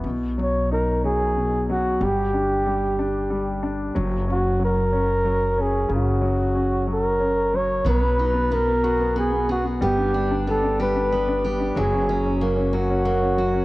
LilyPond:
<<
  \new Staff \with { instrumentName = "Flugelhorn" } { \time 6/8 \key fis \mixolydian \tempo 4. = 62 r8 cis''8 ais'8 gis'4 fis'8 | g'2~ g'8 r8 | r8 fis'8 ais'4. gis'8 | fis'4. ais'4 cis''8 |
b'4 ais'4 gis'8 fis'8 | g'4 a'8 b'4 r8 | gis'4 r8 fis'4. | }
  \new Staff \with { instrumentName = "Steel-string acoustic guitar" } { \time 6/8 \key fis \mixolydian r2. | r2. | r2. | r2. |
fis8 dis'8 b8 gis'8 b8 gis'8 | b8 d'8 b8 g'8 b8 g'8 | fis8 cis'8 ais8 fis'8 ais8 fis'8 | }
  \new Staff \with { instrumentName = "Grand piano" } { \time 6/8 \key fis \mixolydian b,8 fis8 dis'8 fis8 b,8 fis8 | g8 d'8 g8 d'8 g8 d'8 | fis8 cis'8 fis8 cis'8 fis8 cis'8 | cis8 fis8 cis'8 fis8 cis'8 fis8 |
b16 b16 b16 b16 b16 b16 fis'16 b16 b16 b16 b16 b16 | g16 d'16 g16 d'16 g16 d'16 g16 d'16 g16 d'16 g16 d'16 | fis16 cis'16 fis16 cis'16 fis16 cis'16 fis16 cis'16 fis16 cis'16 fis16 cis'16 | }
  \new Staff \with { instrumentName = "Upright bass" } { \clef bass \time 6/8 \key fis \mixolydian b,,2. | g,,2. | fis,,2. | fis,,2. |
b,,2. | g,,2. | fis,,2. | }
>>